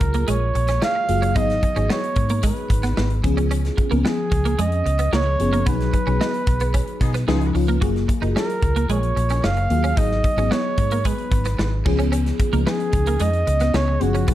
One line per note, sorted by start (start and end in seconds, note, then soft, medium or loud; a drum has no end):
0.00 0.24 C#2 medium
0.00 1.08 F#3 medium
0.00 1.37 G#3 soft
0.00 1.08 A#3 medium
0.00 1.09 F4 medium
0.00 1.09 G#4 loud
0.00 0.31 A#4 medium
0.00 muted clean electric guitar stroke soft
0.00 kick medium
0.00 closed hi-hat medium
0.14 0.22 A#3 medium
0.14 closed hi-hat medium
0.28 0.51 A#1 medium
0.28 0.35 G#3 medium
0.28 0.83 C#5 loud
0.28 closed hi-hat loud
0.55 0.78 A#1 medium
0.55 muted clean electric guitar stroke soft
0.55 closed hi-hat medium
0.68 0.76 C#4 medium
0.68 snare soft
0.68 closed hi-hat medium
0.82 0.89 C#4 medium
0.82 1.33 F5 loud
0.82 snare loud
0.95 muted clean electric guitar stroke soft
1.08 1.36 F#1 medium
1.08 1.28 F#3 medium
1.08 1.28 A#3 medium
1.08 1.28 F4 medium
1.08 1.29 G#4 medium
1.08 closed hi-hat medium
1.22 1.30 C#4 medium
1.22 closed hi-hat medium
1.35 1.58 G#1 medium
1.35 1.65 F#3 medium
1.35 1.65 B3 medium
1.35 1.65 D#4 medium
1.35 1.43 D#4 medium
1.35 1.65 G#4 medium
1.35 1.87 D#5 loud
1.35 kick loud
1.35 closed hi-hat medium
1.50 snare soft
1.50 closed hi-hat soft
1.63 muted clean electric guitar stroke soft
1.63 kick medium
1.63 closed hi-hat medium
1.75 1.88 G#1 medium
1.75 2.54 F#3 medium
1.75 2.55 B3 medium
1.75 1.84 C#4 medium
1.75 2.55 D#4 medium
1.75 2.55 G#4 medium
1.75 closed hi-hat soft
1.90 1.97 B3 medium
1.90 2.41 C#5 loud
1.90 snare loud
2.04 closed hi-hat soft
2.16 2.50 G#2 medium
2.16 muted clean electric guitar stroke soft
2.16 kick medium
2.16 closed hi-hat medium
2.29 2.38 A#3 medium
2.29 closed hi-hat medium
2.43 2.51 G#3 medium
2.43 3.21 B4 medium
2.43 kick loud
2.43 closed hi-hat loud
2.57 closed hi-hat soft
2.70 2.93 G#1 loud
2.70 muted clean electric guitar stroke soft
2.70 kick loud
2.70 closed hi-hat medium
2.83 2.91 B3 medium
2.83 snare soft
2.83 closed hi-hat medium
2.97 3.20 G#1 medium
2.97 3.05 B3 medium
2.97 snare medium
3.10 closed hi-hat soft
3.23 3.69 C#2 medium
3.23 3.78 F3 loud
3.23 3.78 B3 medium
3.23 3.78 C#4 medium
3.23 3.78 G#4 loud
3.23 muted clean electric guitar stroke soft
3.23 kick medium
3.23 closed hi-hat medium
3.37 3.45 C#4 medium
3.37 closed hi-hat medium
3.51 3.58 C#4 medium
3.51 closed hi-hat medium
3.65 snare soft
3.65 closed hi-hat soft
3.77 muted clean electric guitar stroke soft
3.77 kick medium
3.77 closed hi-hat medium
3.91 4.03 C#2 medium
3.91 4.70 F3 medium
3.91 3.99 A#3 medium
3.91 4.70 B3 medium
3.91 4.70 C#4 medium
3.91 4.70 G#4 medium
3.91 closed hi-hat soft
4.05 4.12 B3 medium
4.05 4.62 G#4 medium
4.05 snare loud
4.32 4.54 C#2 medium
4.32 muted clean electric guitar stroke soft
4.32 kick medium
4.32 closed hi-hat medium
4.45 4.53 A#3 medium
4.45 closed hi-hat medium
4.59 4.81 F2 loud
4.59 4.66 G#3 medium
4.59 5.13 D#5 loud
4.59 closed hi-hat loud
4.72 closed hi-hat soft
4.86 5.08 C#2 loud
4.86 muted clean electric guitar stroke soft
4.86 closed hi-hat medium
4.99 5.07 B3 medium
4.99 closed hi-hat medium
5.13 5.35 C#2 medium
5.13 5.20 A#3 medium
5.13 5.64 C#5 loud
5.13 snare loud
5.26 muted clean electric guitar stroke soft
5.39 5.62 F#1 medium
5.39 5.59 F3 medium
5.39 5.59 B3 medium
5.39 5.60 C#4 medium
5.39 5.60 G#4 medium
5.39 closed hi-hat medium
5.53 5.60 A#3 medium
5.53 closed hi-hat medium
5.66 5.89 B1 loud
5.66 5.96 F#3 medium
5.66 5.74 B3 medium
5.66 5.96 B3 medium
5.66 5.96 D#4 medium
5.66 5.97 G#4 medium
5.66 7.25 B4 loud
5.66 kick loud
5.66 closed hi-hat medium
5.81 snare soft
5.81 closed hi-hat soft
5.93 muted clean electric guitar stroke soft
5.93 kick medium
5.93 closed hi-hat medium
6.07 6.18 B1 medium
6.07 6.85 F#3 medium
6.07 6.85 B3 medium
6.07 6.14 C#4 medium
6.07 6.86 D#4 medium
6.07 6.86 G#4 medium
6.07 closed hi-hat soft
6.21 6.28 D#4 medium
6.21 snare loud
6.34 closed hi-hat soft
6.47 6.81 B1 medium
6.47 muted clean electric guitar stroke soft
6.47 kick loud
6.47 closed hi-hat medium
6.60 6.68 B3 medium
6.60 closed hi-hat medium
6.74 6.82 C#4 medium
6.74 kick medium
6.74 closed hi-hat loud
6.88 closed hi-hat soft
7.01 7.23 B2 loud
7.01 7.13 B3 medium
7.01 7.13 D#4 medium
7.01 7.13 G#4 medium
7.01 muted clean electric guitar stroke soft
7.01 kick medium
7.01 closed hi-hat medium
7.14 7.22 B3 medium
7.14 snare soft
7.14 closed hi-hat medium
7.27 7.50 C#2 medium
7.27 7.49 F3 medium
7.27 7.35 G#3 medium
7.27 7.49 C#4 medium
7.27 7.51 D#4 medium
7.27 7.50 D#4 medium
7.27 7.51 F4 medium
7.27 7.51 G#4 medium
7.27 7.50 B4 loud
7.27 snare loud
7.41 closed hi-hat soft
7.54 7.77 C#2 medium
7.54 7.74 F3 medium
7.54 7.75 C#4 medium
7.54 7.75 D#4 medium
7.54 7.75 F4 medium
7.54 muted clean electric guitar stroke soft
7.54 open hi-hat medium
7.68 7.76 A#3 medium
7.68 closed hi-hat medium
7.81 8.04 F#1 loud
7.81 8.11 F#3 medium
7.81 8.11 A#3 medium
7.81 8.11 F4 medium
7.81 7.89 F#4 medium
7.81 8.11 G#4 loud
7.81 kick loud
7.81 closed hi-hat medium
7.96 snare soft
7.96 closed hi-hat soft
8.08 muted clean electric guitar stroke soft
8.08 kick medium
8.08 closed hi-hat medium
8.21 8.33 F#1 medium
8.21 9.00 F#3 medium
8.21 9.00 A#3 medium
8.21 8.30 D#4 medium
8.21 9.01 F4 medium
8.21 9.01 A#4 medium
8.21 closed hi-hat soft
8.36 8.43 C#4 loud
8.36 8.87 A#4 loud
8.36 snare loud
8.50 closed hi-hat soft
8.62 8.85 C#2 medium
8.62 muted clean electric guitar stroke soft
8.62 kick loud
8.62 closed hi-hat medium
8.76 8.84 A#3 medium
8.76 closed hi-hat medium
8.89 9.12 A#1 loud
8.89 8.97 G#3 medium
8.89 9.46 C#5 loud
8.89 closed hi-hat medium
9.03 closed hi-hat soft
9.17 9.39 A#1 loud
9.17 muted clean electric guitar stroke soft
9.17 closed hi-hat medium
9.30 9.38 C#4 medium
9.30 snare soft
9.30 closed hi-hat medium
9.43 9.66 F#1 loud
9.43 9.51 C#4 medium
9.43 10.00 F5 loud
9.43 snare loud
9.57 muted clean electric guitar stroke soft
9.57 closed hi-hat soft
9.70 9.93 D#2 medium
9.70 9.90 F#3 medium
9.70 9.90 A#3 medium
9.70 9.90 F4 medium
9.70 9.90 G#4 medium
9.70 closed hi-hat medium
9.84 9.91 C#4 medium
9.84 closed hi-hat soft
9.97 10.20 G#1 loud
9.97 10.26 F#3 medium
9.97 10.27 B3 medium
9.97 10.05 D#4 medium
9.97 10.27 D#4 medium
9.97 10.27 G#4 medium
9.97 10.53 D#5 loud
9.97 kick loud
9.97 closed hi-hat medium
10.11 snare soft
10.24 muted clean electric guitar stroke soft
10.24 kick medium
10.24 closed hi-hat medium
10.37 10.49 G#1 loud
10.37 11.16 F#3 medium
10.37 11.16 B3 medium
10.37 10.45 C#4 medium
10.37 11.16 D#4 medium
10.37 11.16 G#4 medium
10.37 closed hi-hat soft
10.51 10.58 B3 medium
10.51 11.08 C#5 loud
10.51 snare loud
10.78 11.12 G#2 medium
10.78 muted clean electric guitar stroke soft
10.78 kick medium
10.78 closed hi-hat medium
10.91 10.99 A#3 medium
10.91 closed hi-hat medium
11.05 11.13 G#3 medium
11.05 11.86 B4 medium
11.05 kick loud
11.05 closed hi-hat loud
11.18 closed hi-hat soft
11.31 11.54 G#1 medium
11.31 muted clean electric guitar stroke soft
11.31 kick loud
11.31 closed hi-hat medium
11.45 11.53 B3 medium
11.45 snare soft
11.45 closed hi-hat medium
11.59 11.81 G#1 medium
11.59 11.66 B3 medium
11.59 snare loud
11.86 12.31 C#2 loud
11.86 12.39 F3 medium
11.86 12.40 B3 medium
11.86 12.40 C#4 medium
11.86 12.40 G#4 loud
11.86 muted clean electric guitar stroke soft
11.86 kick loud
11.86 crash medium
11.99 12.06 C#4 medium
11.99 closed hi-hat soft
12.12 12.20 C#4 medium
12.12 closed hi-hat medium
12.26 snare soft
12.26 closed hi-hat soft
12.40 muted clean electric guitar stroke soft
12.40 kick medium
12.40 closed hi-hat medium
12.52 12.64 C#2 medium
12.52 13.31 F3 medium
12.52 12.60 A#3 medium
12.52 13.31 B3 medium
12.52 13.32 C#4 medium
12.52 13.32 D#4 medium
12.52 closed hi-hat soft
12.67 12.74 B3 medium
12.67 13.23 G#4 loud
12.67 snare loud
12.80 closed hi-hat soft
12.93 13.16 C#2 medium
12.93 muted clean electric guitar stroke medium
12.93 kick loud
12.93 closed hi-hat medium
13.06 13.15 A#3 medium
13.06 closed hi-hat medium
13.20 13.43 F2 medium
13.20 13.28 G#3 medium
13.20 13.77 D#5 loud
13.20 closed hi-hat loud
13.33 closed hi-hat soft
13.47 13.70 C#2 loud
13.47 muted clean electric guitar stroke soft
13.47 closed hi-hat medium
13.60 13.68 B3 medium
13.60 snare soft
13.60 closed hi-hat medium
13.74 13.97 C#2 medium
13.74 13.82 C#4 medium
13.74 14.04 C#5 loud
13.74 snare loud
13.88 muted clean electric guitar stroke soft
14.00 14.24 F#1 medium
14.00 14.20 F3 medium
14.00 14.21 B3 medium
14.00 14.21 C#4 medium
14.00 14.34 F#4 medium
14.00 14.21 G#4 medium
14.00 closed hi-hat medium
14.15 14.22 C#4 medium
14.15 closed hi-hat medium
14.28 14.34 B1 loud
14.28 14.34 F#3 medium
14.28 14.34 B3 medium
14.28 14.34 D#4 medium
14.28 14.34 G#4 medium
14.28 kick loud
14.28 closed hi-hat medium